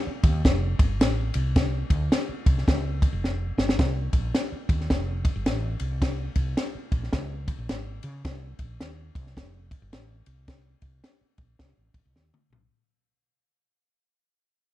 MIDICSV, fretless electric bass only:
0, 0, Header, 1, 3, 480
1, 0, Start_track
1, 0, Tempo, 557621
1, 1345, Time_signature, 4, 2, 24, 8
1, 12686, End_track
2, 0, Start_track
2, 0, Title_t, "Fretless electric bass"
2, 0, Program_c, 0, 35
2, 203, Note_on_c, 0, 39, 104
2, 358, Note_off_c, 0, 39, 0
2, 386, Note_on_c, 0, 29, 114
2, 636, Note_off_c, 0, 29, 0
2, 683, Note_on_c, 0, 31, 90
2, 869, Note_off_c, 0, 31, 0
2, 869, Note_on_c, 0, 33, 103
2, 1117, Note_off_c, 0, 33, 0
2, 1165, Note_on_c, 0, 36, 89
2, 1568, Note_off_c, 0, 36, 0
2, 1637, Note_on_c, 0, 38, 103
2, 1793, Note_off_c, 0, 38, 0
2, 2121, Note_on_c, 0, 36, 92
2, 2275, Note_off_c, 0, 36, 0
2, 2304, Note_on_c, 0, 37, 104
2, 2630, Note_off_c, 0, 37, 0
2, 2691, Note_on_c, 0, 29, 91
2, 3018, Note_off_c, 0, 29, 0
2, 3078, Note_on_c, 0, 31, 82
2, 3233, Note_off_c, 0, 31, 0
2, 3260, Note_on_c, 0, 36, 109
2, 3511, Note_off_c, 0, 36, 0
2, 3554, Note_on_c, 0, 34, 86
2, 3710, Note_off_c, 0, 34, 0
2, 4037, Note_on_c, 0, 39, 93
2, 4192, Note_off_c, 0, 39, 0
2, 4218, Note_on_c, 0, 29, 108
2, 4546, Note_off_c, 0, 29, 0
2, 4610, Note_on_c, 0, 31, 91
2, 4687, Note_off_c, 0, 31, 0
2, 4700, Note_on_c, 0, 33, 101
2, 4950, Note_off_c, 0, 33, 0
2, 4997, Note_on_c, 0, 36, 91
2, 5402, Note_off_c, 0, 36, 0
2, 5473, Note_on_c, 0, 36, 92
2, 5630, Note_off_c, 0, 36, 0
2, 5955, Note_on_c, 0, 34, 96
2, 6110, Note_off_c, 0, 34, 0
2, 6136, Note_on_c, 0, 37, 112
2, 6465, Note_off_c, 0, 37, 0
2, 6529, Note_on_c, 0, 34, 87
2, 6606, Note_off_c, 0, 34, 0
2, 6623, Note_on_c, 0, 32, 94
2, 6872, Note_off_c, 0, 32, 0
2, 6920, Note_on_c, 0, 49, 89
2, 7074, Note_off_c, 0, 49, 0
2, 7099, Note_on_c, 0, 36, 112
2, 7349, Note_off_c, 0, 36, 0
2, 7393, Note_on_c, 0, 34, 86
2, 7549, Note_off_c, 0, 34, 0
2, 7577, Note_on_c, 0, 39, 82
2, 7829, Note_off_c, 0, 39, 0
2, 7878, Note_on_c, 0, 36, 112
2, 8033, Note_off_c, 0, 36, 0
2, 8062, Note_on_c, 0, 29, 115
2, 8389, Note_off_c, 0, 29, 0
2, 8452, Note_on_c, 0, 31, 106
2, 8528, Note_off_c, 0, 31, 0
2, 8544, Note_on_c, 0, 33, 102
2, 8793, Note_off_c, 0, 33, 0
2, 8839, Note_on_c, 0, 36, 90
2, 9244, Note_off_c, 0, 36, 0
2, 9316, Note_on_c, 0, 36, 95
2, 9472, Note_off_c, 0, 36, 0
2, 9798, Note_on_c, 0, 34, 94
2, 9953, Note_off_c, 0, 34, 0
2, 9981, Note_on_c, 0, 36, 106
2, 10107, Note_off_c, 0, 36, 0
2, 10134, Note_on_c, 0, 33, 85
2, 10258, Note_off_c, 0, 33, 0
2, 10281, Note_on_c, 0, 34, 93
2, 10357, Note_off_c, 0, 34, 0
2, 10376, Note_on_c, 0, 36, 97
2, 10452, Note_off_c, 0, 36, 0
2, 10466, Note_on_c, 0, 39, 99
2, 10590, Note_off_c, 0, 39, 0
2, 10761, Note_on_c, 0, 35, 74
2, 10916, Note_off_c, 0, 35, 0
2, 12686, End_track
3, 0, Start_track
3, 0, Title_t, "Muted fretless electric bass strokes"
3, 59, Note_on_c, 9, 29, 50
3, 145, Note_off_c, 9, 29, 0
3, 1972, Note_on_c, 9, 29, 51
3, 2058, Note_off_c, 9, 29, 0
3, 3893, Note_on_c, 9, 29, 51
3, 3979, Note_off_c, 9, 29, 0
3, 5810, Note_on_c, 9, 29, 50
3, 5896, Note_off_c, 9, 29, 0
3, 9651, Note_on_c, 9, 29, 46
3, 9737, Note_off_c, 9, 29, 0
3, 12686, End_track
0, 0, End_of_file